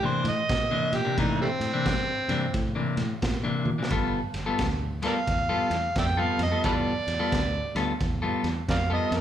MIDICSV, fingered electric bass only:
0, 0, Header, 1, 2, 480
1, 0, Start_track
1, 0, Tempo, 682594
1, 828, Time_signature, 4, 2, 24, 8
1, 6475, End_track
2, 0, Start_track
2, 0, Title_t, "Fingered electric bass"
2, 0, Program_c, 0, 33
2, 0, Note_on_c, 0, 45, 96
2, 76, Note_off_c, 0, 45, 0
2, 171, Note_on_c, 0, 45, 93
2, 291, Note_off_c, 0, 45, 0
2, 347, Note_on_c, 0, 46, 90
2, 554, Note_off_c, 0, 46, 0
2, 650, Note_on_c, 0, 46, 80
2, 770, Note_off_c, 0, 46, 0
2, 827, Note_on_c, 0, 45, 100
2, 1034, Note_off_c, 0, 45, 0
2, 1124, Note_on_c, 0, 45, 80
2, 1247, Note_off_c, 0, 45, 0
2, 1307, Note_on_c, 0, 43, 84
2, 1515, Note_off_c, 0, 43, 0
2, 1606, Note_on_c, 0, 43, 92
2, 1728, Note_off_c, 0, 43, 0
2, 1787, Note_on_c, 0, 45, 97
2, 1995, Note_off_c, 0, 45, 0
2, 2088, Note_on_c, 0, 45, 87
2, 2209, Note_off_c, 0, 45, 0
2, 2268, Note_on_c, 0, 46, 92
2, 2475, Note_off_c, 0, 46, 0
2, 2567, Note_on_c, 0, 46, 83
2, 2689, Note_off_c, 0, 46, 0
2, 2747, Note_on_c, 0, 31, 102
2, 2955, Note_off_c, 0, 31, 0
2, 3049, Note_on_c, 0, 31, 76
2, 3170, Note_off_c, 0, 31, 0
2, 3229, Note_on_c, 0, 38, 91
2, 3556, Note_off_c, 0, 38, 0
2, 3709, Note_on_c, 0, 40, 89
2, 3917, Note_off_c, 0, 40, 0
2, 4009, Note_on_c, 0, 40, 85
2, 4130, Note_off_c, 0, 40, 0
2, 4190, Note_on_c, 0, 41, 90
2, 4397, Note_off_c, 0, 41, 0
2, 4490, Note_on_c, 0, 41, 89
2, 4611, Note_off_c, 0, 41, 0
2, 4671, Note_on_c, 0, 40, 92
2, 4877, Note_off_c, 0, 40, 0
2, 4971, Note_on_c, 0, 40, 81
2, 5091, Note_off_c, 0, 40, 0
2, 5149, Note_on_c, 0, 38, 89
2, 5356, Note_off_c, 0, 38, 0
2, 5449, Note_on_c, 0, 38, 95
2, 5570, Note_off_c, 0, 38, 0
2, 5630, Note_on_c, 0, 40, 93
2, 5836, Note_off_c, 0, 40, 0
2, 5930, Note_on_c, 0, 40, 95
2, 6050, Note_off_c, 0, 40, 0
2, 6106, Note_on_c, 0, 41, 101
2, 6313, Note_off_c, 0, 41, 0
2, 6408, Note_on_c, 0, 41, 93
2, 6475, Note_off_c, 0, 41, 0
2, 6475, End_track
0, 0, End_of_file